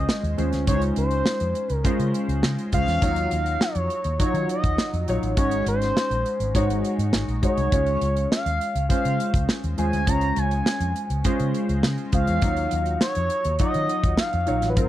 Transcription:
Already playing: grand piano G#3 C#4 F4 C5 C#5, analog synth lead D#5
0.09 snare
0.23 fingered electric bass D#2, closed hi-hat
0.38 fingered electric bass D#2, grand piano G#3 C#4 F4 C5, closed hi-hat
0.52 fingered electric bass D2, snare, closed hi-hat
0.67 fingered electric bass C#2, grand piano G#3 C#4 D#4 C5, analog synth lead C#5, kick, closed hi-hat
0.75 grand piano F4
0.82 closed hi-hat
0.96 fingered electric bass C#2, analog synth lead C5, closed hi-hat
1.11 closed hi-hat
1.26 snare
1.40 fingered electric bass F2, closed hi-hat
1.55 closed hi-hat
1.70 fingered electric bass C#2, closed hi-hat
1.76 analog synth lead A#4
1.84 grand piano G#3 C#4 F4 C5, kick, closed hi-hat
1.99 fingered electric bass C#3, closed hi-hat
2.14 closed hi-hat
2.28 fingered electric bass C#2, closed hi-hat
2.43 fingered electric bass C#3, snare
2.58 closed hi-hat
2.72 fingered electric bass C#2, grand piano G#3 C#4 F4 C5, analog synth lead F5, kick, closed hi-hat
2.87 fingered electric bass E2, snare, closed hi-hat
3.02 fingered electric bass D#2, grand piano F#3 D#4 F4 C#5, kick, closed hi-hat
3.16 closed hi-hat
3.31 fingered electric bass D#2, closed hi-hat
3.46 closed hi-hat
3.61 analog synth lead C#5, snare
3.75 fingered electric bass F2, closed hi-hat
3.90 closed hi-hat
4.04 fingered electric bass D#2, closed hi-hat
4.19 grand piano F#3 D#4 F4 C#5, analog synth lead C#5, muted fingered electric bass stroke, kick, closed hi-hat
4.34 fingered electric bass D#3, closed hi-hat
4.49 analog synth lead D#5, closed hi-hat
4.64 fingered electric bass D#2, kick, closed hi-hat
4.78 snare
4.93 fingered electric bass F2, closed hi-hat
5.08 fingered electric bass A#1, grand piano F#3 D#4 F4 C#5, closed hi-hat
5.22 fingered electric bass A1, closed hi-hat
5.37 fingered electric bass G#1, grand piano G#3 C#4 D#4 F#4, analog synth lead C#5, kick, closed hi-hat
5.51 closed hi-hat
5.66 fingered electric bass G#1, analog synth lead C5, closed hi-hat
5.82 snare, closed hi-hat
5.97 snare
6.11 fingered electric bass A#1, closed hi-hat
6.26 closed hi-hat
6.40 fingered electric bass G#1, closed hi-hat
6.55 fingered electric bass G#2, grand piano G#3 D#4 F#4 C#5, kick, closed hi-hat
6.69 fingered electric bass G#1, closed hi-hat
6.85 closed hi-hat
6.99 fingered electric bass G#2, closed hi-hat
7.13 fingered electric bass G#1, snare
7.28 fingered electric bass A#1, closed hi-hat
7.42 grand piano G#3 D#4 F#4 C#5, analog synth lead C#5, kick, closed hi-hat
7.57 fingered electric bass C2, closed hi-hat
7.72 fingered electric bass C#2, grand piano G#3 C#4 F4 C#5, kick, closed hi-hat
7.86 closed hi-hat
8.01 fingered electric bass C#2, closed hi-hat
8.16 closed hi-hat
8.31 analog synth lead F5, snare
8.46 fingered electric bass D#2, closed hi-hat
8.61 closed hi-hat
8.75 fingered electric bass C#2, closed hi-hat
8.89 grand piano G#3 C#4 F4 C5, analog synth lead F5, kick, closed hi-hat
9.05 fingered electric bass C#3, closed hi-hat
9.20 closed hi-hat
9.34 fingered electric bass C#2, kick, closed hi-hat
9.49 snare
9.64 fingered electric bass D#2, closed hi-hat
9.78 fingered electric bass D#2, grand piano G#3 C#4 F4 C5, analog synth lead G#5, closed hi-hat
9.93 fingered electric bass D2, closed hi-hat
10.06 fingered electric bass C#2, grand piano G#3 C#4 F4 C#5, analog synth lead A#5, kick, closed hi-hat
10.21 closed hi-hat
10.36 fingered electric bass C#2, analog synth lead G#5, closed hi-hat
10.51 closed hi-hat
10.66 snare
10.80 fingered electric bass F2, closed hi-hat
10.96 closed hi-hat
11.10 fingered electric bass C#2, closed hi-hat
11.24 grand piano G#3 C#4 F4 C5, kick, closed hi-hat
11.40 fingered electric bass C#3, closed hi-hat
11.54 closed hi-hat
11.69 fingered electric bass C#2, closed hi-hat
11.83 fingered electric bass C#3, snare
11.98 closed hi-hat
12.12 fingered electric bass C#2, grand piano G#3 C#4 F4 C5, analog synth lead F5, kick, closed hi-hat
12.27 fingered electric bass E2, closed hi-hat
12.42 fingered electric bass D#2, grand piano F#3 D#4 F4 C#5, kick, closed hi-hat
12.56 closed hi-hat
12.71 fingered electric bass D#2, closed hi-hat
12.86 closed hi-hat
13.01 analog synth lead C#5, snare
13.15 fingered electric bass F2, closed hi-hat
13.30 closed hi-hat
13.44 fingered electric bass D#2, closed hi-hat
13.59 grand piano F#3 D#4 F4 C#5, analog synth lead D#5, kick, closed hi-hat
13.74 fingered electric bass D#3, closed hi-hat
13.89 closed hi-hat
14.03 fingered electric bass D#2, kick, closed hi-hat
14.17 analog synth lead F5, snare
14.33 fingered electric bass F2, closed hi-hat
14.46 fingered electric bass A#1, grand piano F#3 D#4 F4 C#5, closed hi-hat
14.62 fingered electric bass A1, snare, closed hi-hat
14.70 analog synth lead B4
14.76 fingered electric bass G#1, grand piano F#3 C4 F4 A#4, analog synth lead C5, kick, closed hi-hat

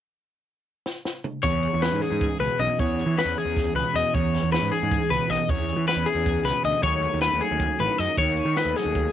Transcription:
0.86 snare
1.05 snare
1.24 mid tom
1.43 picked electric bass E2, clean electric guitar E2 G#4 C#5, kick, closed hi-hat
1.63 clean electric guitar G#4, closed hi-hat
1.74 picked electric bass E2
1.82 clean electric guitar C#4 B4, snare, closed hi-hat
1.93 picked electric bass G#2
2.02 clean electric guitar E3 G#4, closed hi-hat
2.12 picked electric bass G#2
2.21 clean electric guitar G#4, kick, closed hi-hat
2.40 picked electric bass C#2, clean electric guitar B2 G#4 B4, closed hi-hat
2.59 picked electric bass B1, clean electric guitar G#4 D#5, closed hi-hat
2.79 picked electric bass E2, clean electric guitar E2 G#4 C#5, kick, closed hi-hat
2.99 clean electric guitar G#4, closed hi-hat
3.06 picked electric bass E3
3.18 clean electric guitar C#4 B4, snare, closed hi-hat
3.25 picked electric bass E2
3.38 clean electric guitar E3 G#4, closed hi-hat
3.45 picked electric bass E2
3.56 clean electric guitar G#4, kick, snare, closed hi-hat
3.74 picked electric bass C#2, clean electric guitar B4, closed hi-hat
3.78 clean electric guitar B2 G#4
3.94 picked electric bass E2, clean electric guitar G#4 D#5, closed hi-hat
4.14 picked electric bass E2, clean electric guitar E2 G#4 C#5, kick, closed hi-hat
4.34 clean electric guitar G#4, snare, closed hi-hat
4.43 picked electric bass E2
4.52 clean electric guitar C#4 B4, snare, closed hi-hat
4.62 picked electric bass G#2
4.72 clean electric guitar E3 G#4, closed hi-hat
4.83 picked electric bass G#2
4.92 clean electric guitar G#4, kick, closed hi-hat
5.10 picked electric bass C#2, clean electric guitar B2 G#4 B4, closed hi-hat
5.29 picked electric bass B1, clean electric guitar G#4 D#5, snare, closed hi-hat
5.49 picked electric bass E2, clean electric guitar E2 G#4 C#5, kick, closed hi-hat
5.68 clean electric guitar G#4, closed hi-hat
5.77 picked electric bass E3
5.88 clean electric guitar C#4 B4, snare, closed hi-hat
5.96 picked electric bass E2
6.06 clean electric guitar E3 G#4, closed hi-hat
6.15 picked electric bass E2
6.26 clean electric guitar G#4, kick, closed hi-hat
6.44 picked electric bass C#2, clean electric guitar B2 G#4 B4, snare, closed hi-hat
6.64 picked electric bass D2, clean electric guitar G#4 D#5, closed hi-hat
6.83 picked electric bass D#2, clean electric guitar D#3 F#3 A3 C#4 G#4 C#5, kick, closed hi-hat
7.02 clean electric guitar B3, closed hi-hat
7.13 picked electric bass D#2, clean electric guitar C#4
7.21 clean electric guitar A3 B4, snare, closed hi-hat
7.33 picked electric bass D#2
7.40 clean electric guitar F#3 C#4 G#4, closed hi-hat
7.51 picked electric bass D#2
7.60 clean electric guitar G#4, kick, closed hi-hat
7.79 picked electric bass A1, clean electric guitar D#3 B3 B4, closed hi-hat
7.89 clean electric guitar C#4
7.98 picked electric bass F#2, clean electric guitar G#4 D#5, snare, closed hi-hat
8.17 picked electric bass D#2, clean electric guitar D#3 G#4 C#5, kick, closed hi-hat
8.37 clean electric guitar C#4, closed hi-hat
8.45 picked electric bass D#3
8.56 clean electric guitar B4, snare, closed hi-hat
8.60 clean electric guitar A3
8.65 picked electric bass D#2
8.76 clean electric guitar F#3 C#4 G#4, snare, closed hi-hat
8.85 picked electric bass D#2
8.95 clean electric guitar G#4, kick, closed hi-hat

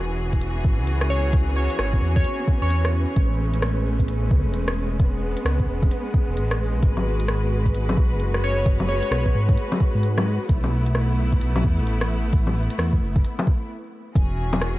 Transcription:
Already playing: detuned saw bass E1, string section E3 C#4 F#4 G#4, synth texture B3 B4
0.33 kick, closed hi-hat
0.41 detuned saw bass E1, closed hi-hat
0.65 detuned saw bass G#1, kick
0.79 detuned saw bass C#2
0.87 closed hi-hat
1.01 cross-stick
1.10 digital synth lead C#5
1.33 kick, closed hi-hat
1.56 digital synth lead C#5
1.70 closed hi-hat
1.79 detuned saw bass G#1, cross-stick, closed hi-hat
1.93 kick
2.01 detuned saw bass E2
2.16 digital synth lead C#5, kick, closed hi-hat
2.24 closed hi-hat
2.48 kick
2.62 detuned saw bass E2, digital synth lead C#5
2.70 closed hi-hat
2.85 cross-stick, closed hi-hat
3.16 detuned saw bass A1, string section G#3 A3, kick, closed hi-hat
3.54 closed hi-hat
3.62 cross-stick, closed hi-hat
3.99 kick, closed hi-hat
4.08 detuned saw bass A1, closed hi-hat
4.31 detuned saw bass C#2, kick
4.45 detuned saw bass E1
4.54 closed hi-hat
4.68 cross-stick
5.00 string section B3, kick, closed hi-hat
5.37 closed hi-hat
5.45 detuned saw bass C#2, cross-stick, closed hi-hat
5.60 kick
5.68 detuned saw bass E1
5.83 kick, closed hi-hat
5.91 closed hi-hat
6.14 kick
6.29 detuned saw bass E1
6.37 detuned saw bass A1, closed hi-hat
6.51 cross-stick, closed hi-hat
6.74 detuned saw bass B1
6.83 detuned saw bass G#1, string section F#4 B4, kick, closed hi-hat
6.97 low bongo
7.20 closed hi-hat
7.28 cross-stick, closed hi-hat
7.66 kick, closed hi-hat
7.74 detuned saw bass G#1, closed hi-hat
7.89 low bongo
7.97 detuned saw bass B1, kick
8.12 detuned saw bass F#1
8.20 closed hi-hat
8.34 cross-stick
8.44 digital synth lead C#5
8.66 kick, closed hi-hat
8.80 low bongo
8.88 digital synth lead C#5
9.03 closed hi-hat
9.11 detuned saw bass B1, cross-stick, closed hi-hat
9.26 kick
9.35 detuned saw bass G#2
9.49 kick, closed hi-hat
9.57 closed hi-hat
9.72 low bongo
9.80 kick
9.95 detuned saw bass G#2
10.03 closed hi-hat
10.18 cross-stick, closed hi-hat, low bongo
10.49 detuned saw bass B1, string section A3 B3 E4, kick, closed hi-hat
10.64 low bongo
10.86 closed hi-hat
10.95 cross-stick, closed hi-hat
11.33 kick, closed hi-hat
11.41 detuned saw bass B1, closed hi-hat
11.56 low bongo
11.64 detuned saw bass E2, kick
11.79 detuned saw bass A1
11.87 closed hi-hat
12.01 cross-stick
12.33 kick, closed hi-hat
12.47 low bongo
12.70 closed hi-hat
12.79 detuned saw bass E2, cross-stick, closed hi-hat
12.93 kick
13.02 detuned saw bass F#1
13.16 kick, closed hi-hat
13.24 closed hi-hat
13.39 low bongo
13.47 kick
14.15 detuned saw bass E1, string section E3 C#4 F#4 G#4, kick, closed hi-hat
14.53 closed hi-hat, low bongo
14.62 cross-stick, closed hi-hat

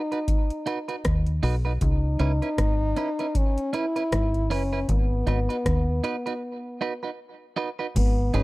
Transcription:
Already playing: french horn D#4
0.12 clean electric guitar D#4 F#4 B4, closed hi-hat
0.28 kick, closed hi-hat
0.50 closed hi-hat
0.66 clean electric guitar D#4 F#4 B4, closed hi-hat
0.88 clean electric guitar D#4 F#4 B4, closed hi-hat
1.05 fingered electric bass D#2, kick, cross-stick, closed hi-hat
1.26 closed hi-hat
1.43 fingered electric bass B1, clean electric guitar D#4 F#4 B4, open hi-hat
1.65 clean electric guitar D#4 F#4 B4
1.81 fingered electric bass C#2, french horn D#4, kick, closed hi-hat
2.19 fingered electric bass C#2, clean electric guitar C#4 E4 B4, closed hi-hat
2.42 clean electric guitar C#4 E4 B4, closed hi-hat
2.58 fingered electric bass G#1, kick, cross-stick, closed hi-hat
2.96 clean electric guitar C#4 E4 B4, closed hi-hat
3.19 clean electric guitar C#4 E4 B4, closed hi-hat
3.35 french horn C#4, kick, closed hi-hat
3.58 closed hi-hat
3.73 clean electric guitar C#4 E4 B4, french horn E4, closed hi-hat
3.96 clean electric guitar C#4 E4 B4, closed hi-hat
4.12 fingered electric bass G#1, kick, cross-stick, closed hi-hat
4.34 closed hi-hat
4.50 fingered electric bass F#1, clean electric guitar C#4 E4 B4, french horn C#4, open hi-hat
4.73 clean electric guitar C#4 E4 B4
4.89 fingered electric bass G#1, french horn B3, kick, closed hi-hat
5.27 fingered electric bass G#1, clean electric guitar D#4 F#4 B4, closed hi-hat
5.49 clean electric guitar D#4 F#4 B4, closed hi-hat
5.66 fingered electric bass D#2, kick, cross-stick, closed hi-hat
6.04 clean electric guitar D#4 F#4 B4, closed hi-hat
6.26 clean electric guitar D#4 F#4 B4, closed hi-hat
6.81 clean electric guitar D#4 F#4 B4
7.03 clean electric guitar D#4 F#4 B4
7.56 clean electric guitar D#4 F#4 B4
7.79 clean electric guitar D#4 F#4 B4
7.96 fingered electric bass G#1, french horn B3, kick, closed hi-hat, crash
8.34 fingered electric bass G#1, french horn C#4, clean electric guitar D#4 G#4 B4, closed hi-hat

